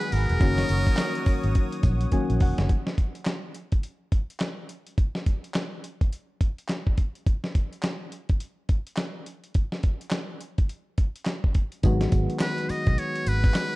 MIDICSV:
0, 0, Header, 1, 7, 480
1, 0, Start_track
1, 0, Key_signature, 5, "minor"
1, 0, Tempo, 571429
1, 344, Time_signature, 4, 2, 24, 8
1, 11556, End_track
2, 0, Start_track
2, 0, Title_t, "Analog synth pad"
2, 0, Program_c, 0, 89
2, 0, Note_on_c, 0, 68, 85
2, 0, Note_on_c, 0, 78, 75
2, 0, Note_on_c, 0, 83, 96
2, 324, Note_off_c, 0, 68, 0
2, 324, Note_off_c, 0, 83, 0
2, 343, Note_on_c, 0, 73, 83
2, 343, Note_on_c, 0, 87, 94
2, 2229, Note_off_c, 0, 78, 0
2, 2244, Note_off_c, 0, 73, 0
2, 2244, Note_off_c, 0, 87, 0
2, 11556, End_track
3, 0, Start_track
3, 0, Title_t, "Muted trumpet"
3, 0, Program_c, 1, 59
3, 0, Note_on_c, 1, 71, 110
3, 108, Note_on_c, 1, 70, 111
3, 120, Note_off_c, 1, 71, 0
3, 1545, Note_off_c, 1, 70, 0
3, 10428, Note_on_c, 1, 71, 99
3, 10669, Note_on_c, 1, 75, 102
3, 10682, Note_off_c, 1, 71, 0
3, 10911, Note_on_c, 1, 73, 104
3, 10924, Note_off_c, 1, 75, 0
3, 11154, Note_on_c, 1, 71, 110
3, 11167, Note_off_c, 1, 73, 0
3, 11556, Note_off_c, 1, 71, 0
3, 11556, End_track
4, 0, Start_track
4, 0, Title_t, "Synth keys"
4, 0, Program_c, 2, 88
4, 0, Control_c, 2, 64, 127
4, 0, Note_on_c, 2, 51, 95
4, 0, Note_on_c, 2, 54, 82
4, 0, Note_on_c, 2, 56, 87
4, 0, Note_on_c, 2, 59, 82
4, 0, Note_on_c, 2, 66, 104
4, 307, Note_off_c, 2, 51, 0
4, 309, Note_off_c, 2, 54, 0
4, 312, Note_off_c, 2, 56, 0
4, 315, Note_off_c, 2, 59, 0
4, 317, Note_off_c, 2, 66, 0
4, 335, Note_on_c, 2, 51, 75
4, 341, Note_on_c, 2, 54, 75
4, 347, Note_on_c, 2, 58, 71
4, 350, Note_on_c, 2, 61, 71
4, 354, Control_c, 2, 64, 0
4, 356, Note_on_c, 2, 66, 82
4, 511, Control_c, 2, 64, 127
4, 1750, Note_off_c, 2, 51, 0
4, 1753, Note_off_c, 2, 54, 0
4, 1756, Note_off_c, 2, 58, 0
4, 1758, Note_off_c, 2, 61, 0
4, 1761, Note_off_c, 2, 66, 0
4, 1784, Note_on_c, 2, 51, 58
4, 1787, Note_on_c, 2, 54, 55
4, 1789, Note_on_c, 2, 58, 59
4, 1789, Note_on_c, 2, 80, 76
4, 1791, Note_on_c, 2, 61, 57
4, 1794, Note_on_c, 2, 66, 64
4, 2010, Note_off_c, 2, 80, 0
4, 2032, Note_on_c, 2, 78, 69
4, 2251, Note_off_c, 2, 78, 0
4, 2264, Note_off_c, 2, 51, 0
4, 2265, Note_off_c, 2, 54, 0
4, 2266, Note_off_c, 2, 58, 0
4, 2267, Note_off_c, 2, 61, 0
4, 2269, Note_off_c, 2, 66, 0
4, 2275, Control_c, 2, 64, 0
4, 9941, Note_on_c, 2, 51, 97
4, 9948, Note_on_c, 2, 54, 81
4, 9952, Note_on_c, 2, 56, 84
4, 9958, Note_on_c, 2, 59, 89
4, 9961, Note_on_c, 2, 66, 104
4, 10093, Control_c, 2, 64, 127
4, 11556, Note_off_c, 2, 51, 0
4, 11556, Note_off_c, 2, 54, 0
4, 11556, Note_off_c, 2, 56, 0
4, 11556, Note_off_c, 2, 59, 0
4, 11556, Note_off_c, 2, 66, 0
4, 11556, End_track
5, 0, Start_track
5, 0, Title_t, "Fingered electric bass"
5, 0, Program_c, 3, 33
5, 106, Note_on_c, 3, 32, 97
5, 214, Note_off_c, 3, 32, 0
5, 252, Note_on_c, 3, 28, 96
5, 321, Note_off_c, 3, 28, 0
5, 344, Note_on_c, 3, 30, 107
5, 523, Note_off_c, 3, 30, 0
5, 585, Note_on_c, 3, 30, 106
5, 693, Note_off_c, 3, 30, 0
5, 1210, Note_on_c, 3, 32, 73
5, 1280, Note_off_c, 3, 32, 0
5, 1541, Note_on_c, 3, 34, 98
5, 1721, Note_off_c, 3, 34, 0
5, 1930, Note_on_c, 3, 34, 92
5, 2000, Note_off_c, 3, 34, 0
5, 2169, Note_on_c, 3, 30, 96
5, 2239, Note_off_c, 3, 30, 0
5, 9944, Note_on_c, 3, 32, 117
5, 10123, Note_off_c, 3, 32, 0
5, 10183, Note_on_c, 3, 32, 96
5, 10292, Note_off_c, 3, 32, 0
5, 10811, Note_on_c, 3, 35, 100
5, 10880, Note_off_c, 3, 35, 0
5, 11144, Note_on_c, 3, 32, 93
5, 11323, Note_off_c, 3, 32, 0
5, 11556, End_track
6, 0, Start_track
6, 0, Title_t, "Muted fingered electric bass strokes"
6, 1063, Note_on_c, 9, 29, 47
6, 1147, Note_off_c, 9, 29, 0
6, 10667, Note_on_c, 9, 29, 49
6, 10751, Note_off_c, 9, 29, 0
6, 11556, End_track
7, 0, Start_track
7, 0, Title_t, "Drums"
7, 10, Note_on_c, 9, 42, 44
7, 94, Note_off_c, 9, 42, 0
7, 101, Note_on_c, 9, 46, 73
7, 102, Note_on_c, 9, 54, 73
7, 185, Note_off_c, 9, 46, 0
7, 186, Note_off_c, 9, 54, 0
7, 246, Note_on_c, 9, 42, 47
7, 330, Note_off_c, 9, 42, 0
7, 342, Note_on_c, 9, 36, 127
7, 342, Note_on_c, 9, 42, 81
7, 342, Note_on_c, 9, 54, 75
7, 426, Note_off_c, 9, 36, 0
7, 426, Note_off_c, 9, 42, 0
7, 426, Note_off_c, 9, 54, 0
7, 487, Note_on_c, 9, 38, 69
7, 489, Note_on_c, 9, 42, 60
7, 571, Note_off_c, 9, 38, 0
7, 573, Note_off_c, 9, 42, 0
7, 580, Note_on_c, 9, 42, 68
7, 580, Note_on_c, 9, 54, 71
7, 664, Note_off_c, 9, 42, 0
7, 664, Note_off_c, 9, 54, 0
7, 729, Note_on_c, 9, 36, 100
7, 729, Note_on_c, 9, 42, 53
7, 813, Note_off_c, 9, 36, 0
7, 813, Note_off_c, 9, 42, 0
7, 814, Note_on_c, 9, 39, 89
7, 819, Note_on_c, 9, 54, 108
7, 821, Note_on_c, 9, 38, 109
7, 821, Note_on_c, 9, 42, 70
7, 898, Note_off_c, 9, 39, 0
7, 903, Note_off_c, 9, 54, 0
7, 905, Note_off_c, 9, 38, 0
7, 905, Note_off_c, 9, 42, 0
7, 967, Note_on_c, 9, 42, 57
7, 1051, Note_off_c, 9, 42, 0
7, 1058, Note_on_c, 9, 54, 64
7, 1059, Note_on_c, 9, 46, 87
7, 1062, Note_on_c, 9, 36, 89
7, 1142, Note_off_c, 9, 54, 0
7, 1143, Note_off_c, 9, 46, 0
7, 1146, Note_off_c, 9, 36, 0
7, 1206, Note_on_c, 9, 42, 46
7, 1290, Note_off_c, 9, 42, 0
7, 1301, Note_on_c, 9, 42, 81
7, 1305, Note_on_c, 9, 36, 96
7, 1385, Note_off_c, 9, 42, 0
7, 1389, Note_off_c, 9, 36, 0
7, 1448, Note_on_c, 9, 42, 65
7, 1532, Note_off_c, 9, 42, 0
7, 1538, Note_on_c, 9, 42, 75
7, 1539, Note_on_c, 9, 54, 72
7, 1540, Note_on_c, 9, 36, 98
7, 1622, Note_off_c, 9, 42, 0
7, 1623, Note_off_c, 9, 54, 0
7, 1624, Note_off_c, 9, 36, 0
7, 1685, Note_on_c, 9, 42, 57
7, 1769, Note_off_c, 9, 42, 0
7, 1777, Note_on_c, 9, 42, 70
7, 1781, Note_on_c, 9, 36, 60
7, 1861, Note_off_c, 9, 42, 0
7, 1865, Note_off_c, 9, 36, 0
7, 1930, Note_on_c, 9, 42, 47
7, 2014, Note_off_c, 9, 42, 0
7, 2019, Note_on_c, 9, 46, 75
7, 2022, Note_on_c, 9, 36, 98
7, 2103, Note_off_c, 9, 46, 0
7, 2106, Note_off_c, 9, 36, 0
7, 2167, Note_on_c, 9, 42, 46
7, 2169, Note_on_c, 9, 38, 93
7, 2251, Note_off_c, 9, 42, 0
7, 2253, Note_off_c, 9, 38, 0
7, 2262, Note_on_c, 9, 42, 72
7, 2263, Note_on_c, 9, 36, 114
7, 2346, Note_off_c, 9, 42, 0
7, 2347, Note_off_c, 9, 36, 0
7, 2408, Note_on_c, 9, 38, 68
7, 2492, Note_off_c, 9, 38, 0
7, 2502, Note_on_c, 9, 42, 58
7, 2503, Note_on_c, 9, 36, 82
7, 2586, Note_off_c, 9, 42, 0
7, 2587, Note_off_c, 9, 36, 0
7, 2647, Note_on_c, 9, 42, 49
7, 2731, Note_off_c, 9, 42, 0
7, 2734, Note_on_c, 9, 39, 80
7, 2741, Note_on_c, 9, 38, 104
7, 2741, Note_on_c, 9, 42, 66
7, 2818, Note_off_c, 9, 39, 0
7, 2825, Note_off_c, 9, 38, 0
7, 2825, Note_off_c, 9, 42, 0
7, 2978, Note_on_c, 9, 42, 72
7, 3062, Note_off_c, 9, 42, 0
7, 3123, Note_on_c, 9, 42, 48
7, 3127, Note_on_c, 9, 36, 90
7, 3207, Note_off_c, 9, 42, 0
7, 3211, Note_off_c, 9, 36, 0
7, 3220, Note_on_c, 9, 42, 73
7, 3304, Note_off_c, 9, 42, 0
7, 3460, Note_on_c, 9, 42, 69
7, 3461, Note_on_c, 9, 36, 91
7, 3544, Note_off_c, 9, 42, 0
7, 3545, Note_off_c, 9, 36, 0
7, 3613, Note_on_c, 9, 42, 53
7, 3695, Note_on_c, 9, 39, 74
7, 3697, Note_off_c, 9, 42, 0
7, 3700, Note_on_c, 9, 42, 65
7, 3702, Note_on_c, 9, 38, 94
7, 3779, Note_off_c, 9, 39, 0
7, 3784, Note_off_c, 9, 42, 0
7, 3786, Note_off_c, 9, 38, 0
7, 3940, Note_on_c, 9, 42, 73
7, 4024, Note_off_c, 9, 42, 0
7, 4087, Note_on_c, 9, 42, 43
7, 4171, Note_off_c, 9, 42, 0
7, 4182, Note_on_c, 9, 36, 117
7, 4182, Note_on_c, 9, 42, 74
7, 4266, Note_off_c, 9, 36, 0
7, 4266, Note_off_c, 9, 42, 0
7, 4326, Note_on_c, 9, 38, 66
7, 4410, Note_off_c, 9, 38, 0
7, 4421, Note_on_c, 9, 42, 66
7, 4422, Note_on_c, 9, 36, 81
7, 4505, Note_off_c, 9, 42, 0
7, 4506, Note_off_c, 9, 36, 0
7, 4570, Note_on_c, 9, 42, 49
7, 4654, Note_off_c, 9, 42, 0
7, 4656, Note_on_c, 9, 39, 79
7, 4664, Note_on_c, 9, 38, 109
7, 4664, Note_on_c, 9, 42, 62
7, 4740, Note_off_c, 9, 39, 0
7, 4748, Note_off_c, 9, 38, 0
7, 4748, Note_off_c, 9, 42, 0
7, 4905, Note_on_c, 9, 42, 76
7, 4989, Note_off_c, 9, 42, 0
7, 5050, Note_on_c, 9, 36, 83
7, 5051, Note_on_c, 9, 42, 46
7, 5134, Note_off_c, 9, 36, 0
7, 5135, Note_off_c, 9, 42, 0
7, 5145, Note_on_c, 9, 42, 73
7, 5229, Note_off_c, 9, 42, 0
7, 5382, Note_on_c, 9, 36, 86
7, 5383, Note_on_c, 9, 42, 71
7, 5466, Note_off_c, 9, 36, 0
7, 5467, Note_off_c, 9, 42, 0
7, 5531, Note_on_c, 9, 42, 50
7, 5615, Note_off_c, 9, 42, 0
7, 5615, Note_on_c, 9, 39, 70
7, 5621, Note_on_c, 9, 42, 61
7, 5623, Note_on_c, 9, 38, 85
7, 5699, Note_off_c, 9, 39, 0
7, 5705, Note_off_c, 9, 42, 0
7, 5707, Note_off_c, 9, 38, 0
7, 5768, Note_on_c, 9, 36, 87
7, 5852, Note_off_c, 9, 36, 0
7, 5859, Note_on_c, 9, 42, 65
7, 5862, Note_on_c, 9, 36, 76
7, 5943, Note_off_c, 9, 42, 0
7, 5946, Note_off_c, 9, 36, 0
7, 6009, Note_on_c, 9, 42, 39
7, 6093, Note_off_c, 9, 42, 0
7, 6103, Note_on_c, 9, 36, 113
7, 6103, Note_on_c, 9, 42, 73
7, 6187, Note_off_c, 9, 36, 0
7, 6187, Note_off_c, 9, 42, 0
7, 6247, Note_on_c, 9, 38, 59
7, 6331, Note_off_c, 9, 38, 0
7, 6342, Note_on_c, 9, 42, 63
7, 6343, Note_on_c, 9, 36, 81
7, 6426, Note_off_c, 9, 42, 0
7, 6427, Note_off_c, 9, 36, 0
7, 6490, Note_on_c, 9, 42, 45
7, 6574, Note_off_c, 9, 42, 0
7, 6575, Note_on_c, 9, 39, 83
7, 6583, Note_on_c, 9, 38, 105
7, 6583, Note_on_c, 9, 42, 63
7, 6659, Note_off_c, 9, 39, 0
7, 6667, Note_off_c, 9, 38, 0
7, 6667, Note_off_c, 9, 42, 0
7, 6821, Note_on_c, 9, 42, 69
7, 6905, Note_off_c, 9, 42, 0
7, 6963, Note_on_c, 9, 42, 46
7, 6968, Note_on_c, 9, 36, 92
7, 7047, Note_off_c, 9, 42, 0
7, 7052, Note_off_c, 9, 36, 0
7, 7059, Note_on_c, 9, 42, 83
7, 7143, Note_off_c, 9, 42, 0
7, 7298, Note_on_c, 9, 42, 65
7, 7301, Note_on_c, 9, 36, 88
7, 7382, Note_off_c, 9, 42, 0
7, 7385, Note_off_c, 9, 36, 0
7, 7448, Note_on_c, 9, 42, 56
7, 7531, Note_on_c, 9, 39, 71
7, 7532, Note_off_c, 9, 42, 0
7, 7537, Note_on_c, 9, 42, 68
7, 7539, Note_on_c, 9, 38, 91
7, 7615, Note_off_c, 9, 39, 0
7, 7621, Note_off_c, 9, 42, 0
7, 7623, Note_off_c, 9, 38, 0
7, 7782, Note_on_c, 9, 42, 67
7, 7866, Note_off_c, 9, 42, 0
7, 7926, Note_on_c, 9, 42, 39
7, 8010, Note_off_c, 9, 42, 0
7, 8017, Note_on_c, 9, 42, 73
7, 8022, Note_on_c, 9, 36, 107
7, 8101, Note_off_c, 9, 42, 0
7, 8106, Note_off_c, 9, 36, 0
7, 8166, Note_on_c, 9, 38, 66
7, 8250, Note_off_c, 9, 38, 0
7, 8258, Note_on_c, 9, 42, 63
7, 8263, Note_on_c, 9, 36, 88
7, 8342, Note_off_c, 9, 42, 0
7, 8347, Note_off_c, 9, 36, 0
7, 8408, Note_on_c, 9, 42, 51
7, 8489, Note_on_c, 9, 39, 89
7, 8492, Note_off_c, 9, 42, 0
7, 8497, Note_on_c, 9, 38, 106
7, 8497, Note_on_c, 9, 42, 69
7, 8573, Note_off_c, 9, 39, 0
7, 8581, Note_off_c, 9, 38, 0
7, 8581, Note_off_c, 9, 42, 0
7, 8741, Note_on_c, 9, 42, 72
7, 8825, Note_off_c, 9, 42, 0
7, 8888, Note_on_c, 9, 42, 46
7, 8890, Note_on_c, 9, 36, 92
7, 8972, Note_off_c, 9, 42, 0
7, 8974, Note_off_c, 9, 36, 0
7, 8983, Note_on_c, 9, 42, 72
7, 9067, Note_off_c, 9, 42, 0
7, 9220, Note_on_c, 9, 42, 65
7, 9223, Note_on_c, 9, 36, 88
7, 9304, Note_off_c, 9, 42, 0
7, 9307, Note_off_c, 9, 36, 0
7, 9371, Note_on_c, 9, 42, 54
7, 9454, Note_on_c, 9, 39, 71
7, 9455, Note_off_c, 9, 42, 0
7, 9459, Note_on_c, 9, 42, 66
7, 9461, Note_on_c, 9, 38, 88
7, 9538, Note_off_c, 9, 39, 0
7, 9543, Note_off_c, 9, 42, 0
7, 9545, Note_off_c, 9, 38, 0
7, 9609, Note_on_c, 9, 36, 83
7, 9693, Note_off_c, 9, 36, 0
7, 9698, Note_on_c, 9, 42, 66
7, 9702, Note_on_c, 9, 36, 84
7, 9782, Note_off_c, 9, 42, 0
7, 9786, Note_off_c, 9, 36, 0
7, 9844, Note_on_c, 9, 42, 40
7, 9928, Note_off_c, 9, 42, 0
7, 9940, Note_on_c, 9, 42, 84
7, 9940, Note_on_c, 9, 54, 76
7, 9943, Note_on_c, 9, 36, 127
7, 10024, Note_off_c, 9, 42, 0
7, 10024, Note_off_c, 9, 54, 0
7, 10027, Note_off_c, 9, 36, 0
7, 10086, Note_on_c, 9, 38, 70
7, 10088, Note_on_c, 9, 42, 59
7, 10170, Note_off_c, 9, 38, 0
7, 10172, Note_off_c, 9, 42, 0
7, 10180, Note_on_c, 9, 42, 70
7, 10180, Note_on_c, 9, 54, 67
7, 10183, Note_on_c, 9, 36, 96
7, 10264, Note_off_c, 9, 42, 0
7, 10264, Note_off_c, 9, 54, 0
7, 10267, Note_off_c, 9, 36, 0
7, 10329, Note_on_c, 9, 42, 52
7, 10412, Note_on_c, 9, 39, 91
7, 10413, Note_off_c, 9, 42, 0
7, 10418, Note_on_c, 9, 54, 108
7, 10419, Note_on_c, 9, 38, 114
7, 10419, Note_on_c, 9, 42, 73
7, 10496, Note_off_c, 9, 39, 0
7, 10502, Note_off_c, 9, 54, 0
7, 10503, Note_off_c, 9, 38, 0
7, 10503, Note_off_c, 9, 42, 0
7, 10568, Note_on_c, 9, 42, 55
7, 10652, Note_off_c, 9, 42, 0
7, 10662, Note_on_c, 9, 54, 66
7, 10663, Note_on_c, 9, 46, 84
7, 10746, Note_off_c, 9, 54, 0
7, 10747, Note_off_c, 9, 46, 0
7, 10807, Note_on_c, 9, 42, 51
7, 10809, Note_on_c, 9, 36, 101
7, 10891, Note_off_c, 9, 42, 0
7, 10893, Note_off_c, 9, 36, 0
7, 10904, Note_on_c, 9, 42, 83
7, 10988, Note_off_c, 9, 42, 0
7, 11050, Note_on_c, 9, 42, 60
7, 11134, Note_off_c, 9, 42, 0
7, 11142, Note_on_c, 9, 42, 78
7, 11144, Note_on_c, 9, 54, 73
7, 11226, Note_off_c, 9, 42, 0
7, 11228, Note_off_c, 9, 54, 0
7, 11288, Note_on_c, 9, 36, 101
7, 11290, Note_on_c, 9, 42, 57
7, 11372, Note_off_c, 9, 36, 0
7, 11374, Note_off_c, 9, 42, 0
7, 11375, Note_on_c, 9, 39, 76
7, 11380, Note_on_c, 9, 42, 72
7, 11382, Note_on_c, 9, 38, 95
7, 11383, Note_on_c, 9, 54, 90
7, 11459, Note_off_c, 9, 39, 0
7, 11464, Note_off_c, 9, 42, 0
7, 11466, Note_off_c, 9, 38, 0
7, 11467, Note_off_c, 9, 54, 0
7, 11556, End_track
0, 0, End_of_file